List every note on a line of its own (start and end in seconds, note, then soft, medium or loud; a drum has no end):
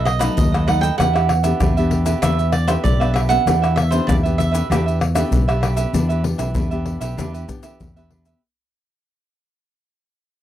0.00 0.28 B1 loud
0.00 0.35 B2 medium
0.05 0.20 D#5 medium
0.05 muted cavaquinho stroke soft
0.05 pandeiro medium
0.05 tamborim medium
0.19 0.63 F#3 medium
0.19 0.63 A3 medium
0.19 0.63 D#4 medium
0.19 0.52 A4 medium
0.19 0.37 B4 medium
0.19 0.51 B4 medium
0.19 0.51 D#5 medium
0.19 pandeiro medium
0.19 tamborim medium
0.19 maracas medium
0.37 0.90 D#2 medium
0.37 0.96 F#2 medium
0.37 0.67 D#5 medium
0.37 pandeiro medium
0.37 maracas medium
0.37 surdo loud
0.52 0.66 A4 medium
0.52 0.67 B4 medium
0.52 0.67 D#5 medium
0.52 pandeiro soft
0.52 tamborim medium
0.52 maracas soft
0.66 0.88 F#3 medium
0.66 0.88 A3 medium
0.66 0.82 D#4 soft
0.66 0.88 D#4 medium
0.66 0.82 A4 soft
0.66 0.82 B4 medium
0.66 0.80 D#5 medium
0.66 0.81 F#5 medium
0.66 pandeiro medium
0.66 tamborim medium
0.81 0.98 A4 medium
0.81 0.98 B4 medium
0.81 0.97 D#5 medium
0.81 0.97 G5 loud
0.81 pandeiro medium
0.81 maracas medium
0.98 1.52 E2 medium
0.98 1.59 E3 medium
0.98 1.29 B3 medium
0.98 1.13 D4 soft
0.98 1.29 D4 medium
0.98 1.13 G4 soft
0.98 1.29 G4 medium
0.98 1.14 B4 medium
0.98 1.12 E5 soft
0.98 2.22 F#5 loud
0.98 pandeiro medium
0.98 tamborim medium
0.98 maracas medium
0.98 surdo medium
1.13 1.28 G4 medium
1.13 1.29 B4 medium
1.13 1.28 E5 medium
1.13 pandeiro soft
1.13 tamborim medium
1.13 maracas soft
1.29 muted cavaquinho stroke soft
1.29 pandeiro medium
1.29 tamborim medium
1.43 1.71 B3 medium
1.43 1.71 D4 medium
1.43 1.60 G4 medium
1.43 1.72 G4 medium
1.43 1.59 B4 medium
1.43 1.59 E5 medium
1.43 pandeiro medium
1.43 maracas medium
1.60 2.14 E2 medium
1.60 2.20 B2 medium
1.60 1.75 D4 soft
1.60 1.75 G4 soft
1.60 1.76 B4 medium
1.60 1.76 E5 medium
1.60 pandeiro medium
1.60 tamborim medium
1.60 maracas medium
1.60 surdo loud
1.77 2.03 B3 medium
1.77 2.03 D4 medium
1.77 2.04 G4 medium
1.77 2.06 G4 medium
1.77 2.05 B4 medium
1.77 2.04 E5 medium
1.77 pandeiro soft
1.77 maracas soft
1.91 pandeiro medium
2.05 2.18 B3 medium
2.05 2.18 D4 medium
2.05 2.22 G4 medium
2.05 2.18 G4 medium
2.05 2.21 B4 medium
2.05 2.21 E5 medium
2.05 pandeiro medium
2.05 maracas medium
2.22 2.76 E2 medium
2.22 2.82 E3 medium
2.22 2.64 B3 medium
2.22 2.37 D4 medium
2.22 2.65 D4 medium
2.22 2.37 G4 medium
2.22 2.65 G4 medium
2.22 2.38 B4 medium
2.22 2.52 E5 loud
2.22 2.37 E5 medium
2.22 pandeiro medium
2.22 tamborim medium
2.22 maracas medium
2.22 surdo medium
2.38 2.52 G4 soft
2.38 2.52 B4 soft
2.38 2.53 E5 medium
2.38 pandeiro soft
2.38 maracas soft
2.52 2.69 D5 medium
2.52 muted cavaquinho stroke soft
2.52 pandeiro medium
2.52 tamborim medium
2.67 2.95 B3 medium
2.67 2.95 D4 medium
2.67 2.95 G4 medium
2.67 2.99 G4 medium
2.67 2.99 B4 medium
2.67 2.73 C5 medium
2.67 2.98 E5 medium
2.67 pandeiro medium
2.67 tamborim medium
2.67 maracas medium
2.84 3.37 B1 loud
2.84 3.44 B2 medium
2.84 3.13 D5 medium
2.84 pandeiro medium
2.84 maracas medium
2.84 surdo loud
3.00 3.27 B3 medium
3.00 3.27 D4 medium
3.00 3.14 G4 medium
3.00 3.27 G4 medium
3.00 3.15 B4 medium
3.00 3.14 E5 medium
3.00 pandeiro soft
3.00 tamborim medium
3.00 maracas soft
3.14 3.29 D4 medium
3.14 3.30 G4 medium
3.14 3.30 B4 medium
3.14 3.19 E5 medium
3.14 3.28 E5 medium
3.14 pandeiro medium
3.14 tamborim medium
3.29 3.41 B3 medium
3.29 3.41 D4 medium
3.29 3.42 G4 medium
3.29 3.46 G4 medium
3.29 3.45 B4 medium
3.29 3.45 E5 medium
3.29 3.73 F#5 loud
3.29 pandeiro medium
3.29 maracas medium
3.46 3.99 E2 medium
3.46 4.06 E3 medium
3.46 3.76 B3 medium
3.46 3.61 D4 soft
3.46 3.76 D4 medium
3.46 3.61 G4 soft
3.46 3.76 G4 medium
3.46 3.61 B4 soft
3.46 3.61 E5 medium
3.46 pandeiro medium
3.46 tamborim medium
3.46 maracas medium
3.46 surdo medium
3.62 3.76 G4 medium
3.62 3.76 B4 medium
3.62 3.76 E5 medium
3.62 pandeiro soft
3.62 tamborim medium
3.62 maracas soft
3.76 3.91 E5 medium
3.76 muted cavaquinho stroke soft
3.76 pandeiro medium
3.76 tamborim medium
3.90 4.19 B3 medium
3.90 4.19 D4 medium
3.90 4.07 G4 soft
3.90 4.19 G4 medium
3.90 4.07 B4 medium
3.90 4.08 C5 medium
3.90 4.06 E5 medium
3.90 pandeiro medium
3.90 maracas medium
4.07 4.61 E2 medium
4.07 4.67 B2 medium
4.07 4.22 D4 medium
4.07 4.23 G4 medium
4.07 4.23 B4 medium
4.07 4.15 D5 medium
4.07 4.22 E5 medium
4.07 pandeiro medium
4.07 tamborim medium
4.07 maracas medium
4.07 surdo loud
4.23 4.66 B3 medium
4.23 4.66 D4 medium
4.23 4.53 G4 medium
4.23 4.66 G4 medium
4.23 4.52 B4 medium
4.23 4.50 E5 medium
4.23 pandeiro soft
4.23 maracas soft
4.38 5.59 E5 medium
4.38 pandeiro medium
4.38 maracas medium
4.51 4.69 G4 medium
4.51 4.68 B4 medium
4.51 4.67 E5 medium
4.51 pandeiro medium
4.51 maracas medium
4.70 5.23 E2 medium
4.70 5.29 E3 medium
4.70 4.99 B3 medium
4.70 4.84 D4 medium
4.70 5.00 D4 medium
4.70 4.85 G4 medium
4.70 5.00 G4 medium
4.70 4.85 B4 medium
4.70 4.85 E5 medium
4.70 pandeiro medium
4.70 tamborim medium
4.70 maracas medium
4.70 surdo medium
4.86 4.99 G4 soft
4.86 4.99 B4 soft
4.86 4.99 E5 medium
4.86 pandeiro soft
4.86 maracas soft
4.99 muted cavaquinho stroke soft
4.99 pandeiro medium
4.99 tamborim medium
5.15 5.42 B3 medium
5.15 5.42 D4 medium
5.15 5.43 G4 medium
5.15 5.47 G4 soft
5.15 5.46 B4 medium
5.15 5.46 E5 medium
5.15 pandeiro medium
5.15 tamborim medium
5.15 maracas medium
5.31 5.84 B1 medium
5.31 5.91 B2 medium
5.31 pandeiro medium
5.31 maracas medium
5.31 surdo loud
5.48 5.90 B3 medium
5.48 5.90 D4 soft
5.48 5.90 G4 medium
5.48 5.60 G4 medium
5.48 5.61 B4 medium
5.48 5.62 E5 medium
5.48 pandeiro soft
5.48 tamborim medium
5.48 maracas soft
5.61 5.76 D4 soft
5.61 5.77 G4 medium
5.61 5.76 B4 medium
5.61 5.75 E5 medium
5.61 pandeiro medium
5.61 tamborim medium
5.76 5.93 G4 medium
5.76 5.92 B4 medium
5.76 5.92 E5 medium
5.76 pandeiro medium
5.76 maracas medium
5.93 6.33 E2 medium
5.93 6.53 E3 medium
5.93 6.20 B3 medium
5.93 6.08 D4 soft
5.93 6.20 D4 medium
5.93 6.08 G4 soft
5.93 6.21 G4 medium
5.93 6.09 B4 soft
5.93 6.07 E5 medium
5.93 pandeiro medium
5.93 maracas medium
5.93 surdo medium
6.09 6.23 G4 medium
6.09 6.23 B4 medium
6.09 6.23 E5 medium
6.09 pandeiro soft
6.09 maracas soft
6.24 6.54 B3 medium
6.24 6.54 D4 medium
6.24 6.54 G4 medium
6.24 muted cavaquinho stroke soft
6.24 pandeiro medium
6.38 6.53 B1 medium
6.38 6.54 G4 soft
6.38 6.54 B4 soft
6.38 6.54 E5 medium
6.38 pandeiro medium
6.38 maracas medium
6.55 6.95 E2 medium
6.55 7.15 B2 medium
6.55 6.70 D4 soft
6.55 6.70 G4 medium
6.55 6.71 B4 medium
6.55 6.69 E5 medium
6.55 pandeiro medium
6.55 maracas medium
6.55 surdo loud
6.71 7.13 B3 medium
6.71 7.13 D4 medium
6.71 7.14 G4 medium
6.71 7.01 G4 soft
6.71 7.01 B4 medium
6.71 6.99 E5 medium
6.71 pandeiro soft
6.71 maracas soft
6.86 pandeiro medium
7.00 7.15 B1 medium
7.00 7.17 G4 medium
7.00 7.17 B4 medium
7.00 7.16 E5 medium
7.00 pandeiro medium
7.00 maracas medium
7.17 7.44 E2 medium
7.17 7.77 E3 soft
7.17 7.44 B3 soft
7.17 7.32 D4 medium
7.17 7.44 D4 soft
7.17 7.32 G4 medium
7.17 7.44 G4 medium
7.17 7.33 B4 medium
7.17 7.32 E5 medium
7.17 pandeiro medium
7.17 maracas medium
7.17 surdo medium
7.33 7.48 G4 soft
7.33 7.48 B4 soft
7.33 7.48 E5 soft
7.33 pandeiro soft
7.33 maracas soft
7.48 7.78 B3 medium
7.48 7.78 D4 medium
7.48 7.78 G4 medium
7.48 muted cavaquinho stroke soft
7.48 pandeiro medium
7.48 maracas medium
7.48 surdo medium
7.63 7.95 G4 medium
7.63 7.94 B4 soft
7.63 7.94 E5 medium
7.63 pandeiro medium
7.63 maracas medium
7.80 8.33 E2 medium
7.80 8.39 B2 medium
7.80 pandeiro medium
7.80 maracas medium
7.80 surdo medium
7.96 8.37 B3 medium
7.96 8.38 D4 medium
7.96 8.38 G4 medium
7.96 8.11 G4 medium
7.96 8.11 B4 medium
7.96 8.10 E5 medium
7.96 pandeiro soft
7.96 maracas soft
8.11 8.26 D4 soft
8.11 8.26 G4 soft
8.11 8.26 B4 soft
8.11 8.25 E5 soft
8.11 pandeiro medium
8.25 8.42 G4 soft
8.25 8.41 B4 soft
8.25 8.41 E5 medium
8.25 pandeiro soft
8.25 maracas medium